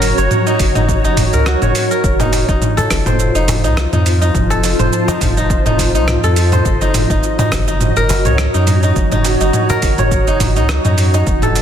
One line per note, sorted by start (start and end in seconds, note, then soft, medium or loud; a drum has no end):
0.00 0.13 F#1 medium
0.00 0.46 D#4 medium
0.00 2.04 F#4 loud
0.00 1.16 A#4 medium
0.00 0.18 C#5 medium
0.00 2.04 C#5 loud
0.00 2.04 D#5 medium
0.00 2.04 A#5 medium
0.00 open hi-hat loud
0.00 cabasa medium
0.18 0.28 F#1 loud
0.18 1.33 C#5 medium
0.18 cabasa soft
0.31 mid tom medium
0.31 cabasa soft
0.47 0.75 D#4 medium
0.47 cabasa soft
0.60 0.99 F#1 medium
0.60 kick medium
0.60 open hi-hat medium
0.60 cabasa medium
0.75 1.04 D#4 medium
0.75 mid tom medium
0.75 cabasa soft
0.89 kick loud
0.89 cabasa soft
1.04 1.27 F#1 loud
1.04 2.19 D#4 medium
1.04 cabasa soft
1.17 kick medium
1.17 mid tom medium
1.17 open hi-hat loud
1.17 cabasa medium
1.33 1.56 C#2 loud
1.33 1.91 A#4 medium
1.33 cabasa soft
1.46 2.93 F#4 medium
1.46 cross-stick medium
1.46 cabasa soft
1.62 1.73 F#1 medium
1.62 2.77 C#5 medium
1.62 mid tom medium
1.62 cabasa soft
1.75 open hi-hat medium
1.75 cabasa medium
1.91 2.83 A#4 medium
1.91 cabasa soft
2.04 2.44 F1 loud
2.04 6.65 F4 medium
2.04 kick loud
2.04 cabasa soft
2.20 2.48 D#4 medium
2.20 cajon slap medium
2.20 mid tom medium
2.20 cabasa soft
2.33 cajon slap medium
2.33 open hi-hat medium
2.33 cabasa medium
2.41 6.66 C5 medium
2.49 2.59 F1 loud
2.49 3.35 D#4 medium
2.49 kick loud
2.49 cabasa soft
2.62 mid tom medium
2.62 cabasa soft
2.77 4.09 A4 loud
2.77 cajon bass medium
2.77 cabasa soft
2.86 11.62 D#5 medium
2.91 3.30 F1 medium
2.91 kick medium
2.91 cross-stick medium
2.91 open hi-hat medium
2.91 cabasa medium
3.06 4.25 C5 medium
3.06 cajon slap medium
3.06 mid tom medium
3.06 cabasa soft
3.17 6.66 A5 medium
3.17 cabasa soft
3.35 3.65 F1 loud
3.35 3.64 D#4 medium
3.35 cabasa soft
3.48 cajon bass loud
3.48 cajon slap medium
3.48 mid tom medium
3.48 open hi-hat medium
3.48 cabasa medium
3.64 3.87 C2 medium
3.64 3.92 D#4 medium
3.64 cabasa soft
3.77 cross-stick medium
3.77 cabasa soft
3.93 4.31 F2 medium
3.93 4.21 D#4 medium
3.93 mid tom medium
3.93 cabasa soft
4.06 open hi-hat loud
4.06 cabasa medium
4.22 5.08 D#4 medium
4.22 cabasa soft
4.35 4.75 F1 loud
4.35 kick loud
4.35 mid tom medium
4.35 cabasa soft
4.50 5.82 A4 loud
4.50 cajon slap medium
4.50 cabasa soft
4.64 cajon slap medium
4.64 open hi-hat medium
4.64 cabasa medium
4.79 4.90 F1 loud
4.79 5.98 C5 medium
4.79 mid tom medium
4.79 cabasa soft
4.93 cabasa soft
5.08 5.37 D#4 medium
5.08 cajon bass loud
5.08 cajon slap soft
5.08 cabasa soft
5.21 5.61 F1 loud
5.21 kick loud
5.21 mid tom medium
5.21 open hi-hat medium
5.21 cabasa medium
5.37 5.66 D#4 medium
5.37 cabasa soft
5.50 kick loud
5.50 cabasa soft
5.66 5.96 F1 loud
5.66 5.94 D#4 medium
5.66 mid tom medium
5.66 cabasa soft
5.79 kick medium
5.79 open hi-hat medium
5.79 cabasa medium
5.95 6.17 C2 medium
5.95 6.81 D#4 medium
5.95 cabasa soft
6.08 cross-stick medium
6.08 mid tom medium
6.08 cabasa soft
6.23 6.61 F2 loud
6.23 7.56 A4 loud
6.23 cabasa soft
6.36 open hi-hat medium
6.36 cabasa medium
6.52 7.71 C5 medium
6.52 cajon slap medium
6.52 mid tom medium
6.52 cabasa soft
6.65 7.05 F#1 loud
6.65 11.27 F#4 medium
6.65 kick loud
6.65 cabasa soft
6.81 7.10 D#4 medium
6.81 cajon slap medium
6.81 cabasa soft
6.89 11.27 C#5 medium
6.94 cajon slap medium
6.94 mid tom medium
6.94 open hi-hat medium
6.94 cabasa medium
7.10 7.21 F#1 loud
7.10 7.39 D#4 medium
7.10 kick loud
7.10 cabasa soft
7.23 cabasa soft
7.39 7.67 D#4 medium
7.39 cajon bass medium
7.39 mid tom medium
7.39 cabasa soft
7.50 7.92 F#1 loud
7.50 11.27 A#5 medium
7.50 kick medium
7.50 cross-stick medium
7.50 open hi-hat medium
7.50 cabasa medium
7.67 8.54 D#4 medium
7.67 cajon slap medium
7.67 cabasa soft
7.81 mid tom medium
7.81 cabasa soft
7.96 8.27 F#1 medium
7.96 9.24 A#4 loud
7.96 cabasa soft
8.09 cajon bass loud
8.09 cajon slap medium
8.09 open hi-hat medium
8.09 cabasa medium
8.25 8.48 C#2 medium
8.25 9.40 C#5 medium
8.25 mid tom medium
8.25 cabasa soft
8.38 cross-stick medium
8.38 cabasa soft
8.54 8.92 F#2 loud
8.54 8.83 D#4 medium
8.54 cabasa soft
8.67 mid tom medium
8.67 open hi-hat medium
8.67 cabasa medium
8.83 9.12 D#4 medium
8.83 cabasa soft
8.96 9.36 F#1 loud
8.96 kick loud
8.96 cabasa soft
9.12 9.41 D#4 medium
9.12 cajon slap medium
9.12 mid tom medium
9.12 cabasa soft
9.24 cajon slap medium
9.24 open hi-hat medium
9.24 cabasa medium
9.40 9.51 F#1 loud
9.40 10.27 D#4 medium
9.40 cabasa soft
9.53 mid tom medium
9.53 cabasa soft
9.69 10.97 A#4 loud
9.69 cajon bass medium
9.69 cajon slap soft
9.69 cabasa soft
9.82 10.22 F#1 medium
9.82 kick loud
9.82 open hi-hat medium
9.82 cabasa medium
9.98 11.13 C#5 medium
9.98 cajon slap medium
9.98 mid tom medium
9.98 cabasa soft
10.11 kick loud
10.11 cabasa soft
10.27 10.58 F#1 loud
10.27 10.56 D#4 medium
10.27 cabasa soft
10.40 kick medium
10.40 mid tom medium
10.40 open hi-hat medium
10.40 cabasa medium
10.56 10.79 C#2 medium
10.56 10.85 D#4 medium
10.56 cabasa soft
10.69 cross-stick medium
10.69 cabasa soft
10.85 11.23 F#2 loud
10.85 11.14 D#4 medium
10.85 mid tom medium
10.85 cabasa soft
10.98 open hi-hat medium
10.98 cabasa medium
11.14 11.62 D#4 medium
11.14 cajon slap medium
11.14 cabasa soft
11.27 11.62 F1 loud
11.27 kick loud
11.27 cabasa soft
11.42 11.62 A4 medium
11.42 cajon slap medium
11.42 mid tom medium
11.42 cabasa soft
11.56 cajon slap medium
11.56 open hi-hat medium
11.56 cabasa medium